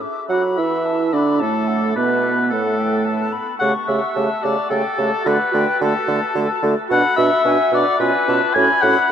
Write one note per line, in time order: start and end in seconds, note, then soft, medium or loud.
0.01 0.29 D6 soft
0.29 0.59 F#3 medium
0.29 0.43 F#4 medium
0.29 0.56 F#4 medium
0.29 0.42 F#5 medium
0.29 0.87 B5 medium
0.57 1.15 E3 medium
0.57 1.12 E4 medium
0.57 1.15 E4 medium
0.57 1.15 E5 medium
0.85 1.14 A5 soft
1.13 1.42 D3 medium
1.13 1.43 D4 medium
1.13 1.41 D5 medium
1.13 1.41 B5 medium
1.40 1.96 A2 medium
1.40 1.96 A3 medium
1.40 1.95 A4 medium
1.40 1.69 A5 medium
1.68 1.95 F#5 medium
1.96 2.54 B2 medium
1.96 2.54 B3 medium
1.96 2.51 B3 medium
1.96 2.50 B4 medium
1.96 2.52 E5 medium
2.50 3.34 A2 medium
2.50 3.34 A3 medium
2.50 3.33 A3 medium
2.50 3.32 A4 medium
2.50 2.80 F#5 soft
2.78 3.06 G5 medium
3.05 3.34 A5 medium
3.33 3.58 B5 medium
3.59 3.73 C#3 medium
3.59 3.74 A3 medium
3.59 3.74 G4 medium
3.59 3.72 F#5 medium
3.59 4.14 C#6 medium
3.88 4.01 C#3 medium
3.88 4.01 A3 soft
3.88 4.01 G4 medium
3.88 4.45 E5 medium
4.14 4.28 C#3 medium
4.14 4.29 A3 medium
4.14 4.28 G4 medium
4.14 4.72 A5 medium
4.43 4.56 C#3 medium
4.43 4.56 A3 soft
4.43 4.55 G4 medium
4.43 4.70 D5 medium
4.70 4.83 C#3 medium
4.70 4.83 A3 medium
4.70 4.82 G4 medium
4.70 5.28 A4 medium
4.70 5.00 G5 medium
4.97 5.11 C#3 medium
4.97 5.12 A3 medium
4.97 5.10 G4 medium
4.97 5.26 A5 medium
5.25 5.38 D3 medium
5.25 5.39 A3 medium
5.25 5.38 F#4 medium
5.25 5.81 B4 medium
5.25 5.53 F#5 medium
5.52 5.66 D3 medium
5.52 5.66 A3 medium
5.52 5.64 F#4 medium
5.52 5.81 G5 medium
5.80 5.93 D3 medium
5.80 5.95 A3 medium
5.80 5.93 F#4 medium
5.80 6.62 A4 medium
5.80 6.62 A5 medium
6.06 6.20 D3 medium
6.06 6.22 A3 medium
6.06 6.19 F#4 medium
6.34 6.47 D3 medium
6.34 6.49 A3 medium
6.34 6.47 F#4 medium
6.62 6.75 D3 medium
6.62 6.76 A3 medium
6.62 6.76 F#4 medium
6.90 7.03 B2 medium
6.90 7.04 D4 medium
6.90 7.02 F#4 medium
6.90 7.16 F#5 loud
6.90 7.42 B5 medium
7.16 7.30 B2 medium
7.16 7.30 D4 medium
7.16 7.30 F#4 medium
7.16 7.71 E5 loud
7.44 7.57 B2 medium
7.44 7.58 D4 medium
7.44 7.58 F#4 medium
7.44 7.75 G#5 medium
7.71 7.84 B2 medium
7.71 7.85 D4 medium
7.71 7.85 F#4 medium
7.71 7.99 D5 loud
7.71 8.00 F#5 medium
7.99 8.12 B2 medium
7.99 8.13 C#4 medium
7.99 8.12 F4 medium
7.99 8.55 B4 loud
7.99 8.31 G#5 medium
8.28 8.40 B2 medium
8.28 8.40 C#4 medium
8.28 8.40 F4 medium
8.28 8.56 A5 medium
8.54 8.68 A2 medium
8.54 8.69 C#4 medium
8.54 8.69 F#4 medium
8.54 8.83 G#5 loud
8.54 9.12 B5 medium
8.82 8.95 A2 medium
8.82 8.96 C#4 medium
8.82 8.96 F#4 medium
8.82 9.12 F#5 loud